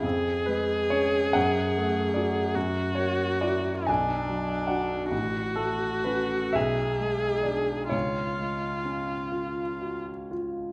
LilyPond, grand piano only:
\new Staff \with { instrumentName = "Grand piano" } { \time 6/8 \key fis \minor \tempo 4. = 44 << { r8 b'8 cis''8 fis''4 d''8 | r8 cis''8 d''8 gis''4 fis''8 | r8 a'8 b'8 e''4 d''8 | cis''2~ cis''8 r8 | } \\ { eis,8 gis8 <cis' gis'>8 fis,8 a8 <cis' fis'>8 | fis,8 ais8 <e' fis'>8 b,,8 fis8 <d' fis'>8 | a,,8 a8 <cis' fis'>8 b,,8 gis8 <d' gis'>8 | cis,8 gis8 cis'8 eis'8 fis'8 eis'8 | } >> }